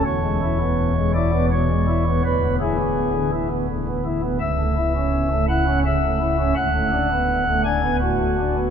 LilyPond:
<<
  \new Staff \with { instrumentName = "Pipe organ" } { \time 3/4 \key e \mixolydian \tempo 4 = 83 cis''4. d''8 cis''4 | b'8 gis'4 r4. | e''4. fis''8 e''4 | fis''4. gis''8 fis'4 | }
  \new Staff \with { instrumentName = "Pipe organ" } { \time 3/4 \key e \mixolydian << { e,16 gis16 e'16 b8 gis16 e'16 b16 b,16 gis16 e'16 b16 | d,16 b16 e'16 b8 d16 e'16 b16 d16 b16 e'16 b16 | cis,16 a16 e'16 cis'8 a16 e'16 cis'16 cis16 a16 e'16 cis'16 | d,16 a16 d'16 b8 a16 d'16 b16 a,16 a16 d'16 b16 | } \\ { e,,2. | d,,2. | cis,,2. | d,,2. | } >> }
>>